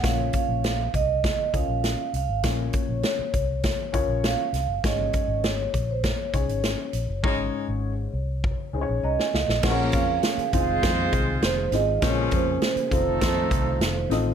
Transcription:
<<
  \new Staff \with { instrumentName = "Vibraphone" } { \time 4/4 \key bes \minor \tempo 4 = 100 f''8 f''4 ees''4 f''4 f''8 | des''4 des''2 f''4 | ees''4 des''8. c''16 des''2~ | des''2. ees''4 |
ges''8 f''4 f''4 r8 c''8 ees''8 | des''8 c''2. r8 | }
  \new Staff \with { instrumentName = "Upright piano" } { \time 4/4 \key bes \minor <des' f' bes' des''>4 r4. <des' f' bes' ees''>4 r8 | <des' f' bes' des''>4 r4. <des' f' bes' des''>4 r8 | <des' ees' aes' des''>4 r4. <des' ees' aes' des''>4 r8 | <des' ees' aes' des''>4 r4. <des' ees' aes' c'' des''>4 r8 |
<f des' aes' bes' c'' des''>4 r8 <c' ees' f' aes' c''>4. r8 <c' ees' f' aes' c''>8 | <bes c' des' f' aes' bes'>4 r8 <c' ees' f' a' c''>4. r8 <c' ees' f' a' ees''>8 | }
  \new Staff \with { instrumentName = "Upright piano" } { \clef bass \time 4/4 \key bes \minor bes,4. r2 r8 | bes,4. r2 r8 | aes,4. r2 r8 | aes,4. r4. bes''16 aes''16 f''8 |
bes,4. r2 r8 | bes,4. r2 r8 | }
  \new Staff \with { instrumentName = "Horn section" } { \time 4/4 \key bes \minor r1 | r1 | r1 | <aes des' ees' des''>8. r2. r16 |
<f bes des' bes'>4 r8 <aes c' f' c''>2 r8 | <f aes des' aes'>4 r8 <f a ees' a'>2 r8 | }
  \new Staff \with { instrumentName = "Tonewheel organ" } { \time 4/4 \key bes \minor r1 | r1 | r1 | r1 |
<des bes aes'>4. <ees aes f'>2~ <ees aes f'>8 | <des bes aes'>4. <ees a f'>2~ <ees a f'>8 | }
  \new Staff \with { instrumentName = "Fingered electric bass" } { \clef bass \time 4/4 \key bes \minor bes,,8 r16 bes,,8. c,8. r16 des,16 bes,,8 r16 c,16 aes,,16 | bes,,8 r16 bes,,16 r8 c,8. r16 des,16 bes,,8 r16 c,16 ges,,16 | aes,,8 r16 aes,,8. bes,,8. r16 c,16 aes,,8 r16 bes,,16 ges,,16 | aes,,8 r16 aes,,8. c,8. r16 des,16 bes,,16 c,16 r16 des,16 bes,,16 |
bes,,8 f,8 r8 f,,8 f,8 c,8 f,,8 aes,,8 | bes,,8 f,8 r8 f,,8 f,8 c,8 f,,8 a,,8 | }
  \new DrumStaff \with { instrumentName = "Drums" } \drummode { \time 4/4 <hh bd sn>8 <hh bd>8 <hh sn>8 <hh bd>8 <hh bd sn>8 <hh bd>8 <hh sn>8 hh8 | <hh bd sn>8 <hh bd>8 <hh sn>8 <hh bd>8 <hh bd sn>8 <hh bd>8 <hh sn>8 <hh sn>8 | <hh bd sn>8 <hh bd>8 <hh sn>8 <hh bd>8 <hh bd sn>8 <hh bd>16 hh16 <hh sn>8 hh8 | bd4 r4 bd4 r16 sn16 sn16 sn16 |
<cymc bd sn>8 <hh bd>8 <hh sn>16 hh16 <hh bd>8 <hh bd sn>8 <hh bd>8 <hh sn>8 <hh sn>8 | <hh bd sn>8 <hh bd>8 <hh sn>16 hh16 <hh bd>8 <hh bd sn>8 <hh bd>8 <hh sn>8 <hh sn>8 | }
>>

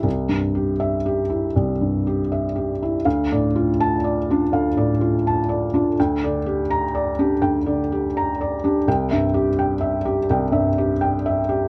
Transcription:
<<
  \new Staff \with { instrumentName = "Felt piano" } { \time 4/4 \key d \minor \tempo 4 = 82 << { r4 e''8 r2 r8 | r4 a''8 r2 r8 | r4 bes''8 r2 r8 | g''8 r2. r8 | } \\ { r1 | \tuplet 3/2 { f''8 d''8 f'8~ f'8 d''8 f'8 f''8 d''8 f'8 a''8 d''8 f'8 } | \tuplet 3/2 { g''8 d''8 g'8~ g'8 d''8 g'8 g''8 d''8 g'8 bes''8 d''8 g'8 } | \tuplet 3/2 { r8 e''8 g'8 g''8 e''8 g'8 g''8 e''8 g'8 g''8 e''8 g'8 } | } >> }
  \new Staff \with { instrumentName = "Felt piano" } { \clef bass \time 4/4 \key d \minor \tuplet 3/2 { c,8 g,8 g'8~ g'8 g'8 e'8 c,8 g,8 g'8 e''8 g'8 e'8 } | \tuplet 3/2 { d,8 a,4 r4 d'8 d,8 a,4 r4 d'8 } | \tuplet 3/2 { d,8 d4 r4 d'8 d,8 d4 r4 d'8 } | \tuplet 3/2 { c,8 g,4 } r4 \tuplet 3/2 { c,8 g,4 } r4 | }
>>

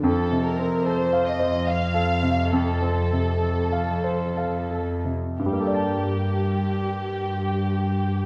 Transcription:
<<
  \new Staff \with { instrumentName = "Violin section" } { \time 3/4 \key g \minor \tempo 4 = 63 a'8 bes'8 c''8 ees''8 f''4 | a'2~ a'8 r8 | g'2. | }
  \new Staff \with { instrumentName = "Grand piano" } { \time 3/4 \key g \minor \tuplet 3/2 { f,8 c8 c'8 a'8 f''8 c''8 f''8 a'8 c8 } | \tuplet 3/2 { f,8 c'8 c8 a'8 f''8 c''8 f''8 a'8 c8 } | <g, g bes a' d'' a''>2. | }
  \new Staff \with { instrumentName = "Cello section" } { \clef bass \time 3/4 \key g \minor f,2.~ | f,2~ f,8. r16 | g,2. | }
>>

